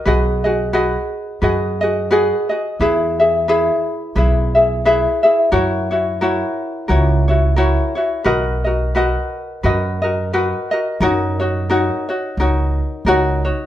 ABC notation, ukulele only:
X:1
M:4/4
L:1/8
Q:"Swing" 1/4=88
K:B
V:1 name="Ukulele"
[FGBd] [FGd] [FGBd]2 [FGBd] [FGd] [FGBd] [FGd] | [EGBe] [EGe] [EGBe]2 [EGBe] [EGe] [EGBe] [EGe] | [EFAc] [EFc] [EFAc]2 [EFAc] [EFc] [EFAc] [EFc] | [FABd] [FAd] [FABd]2 [FABd] [FAd] [FABd] [FAd] |
[K:F#] [DFAc] [DFc] [DFAc] [DFc] [DFAc]2 [DFAc] [DFc] |]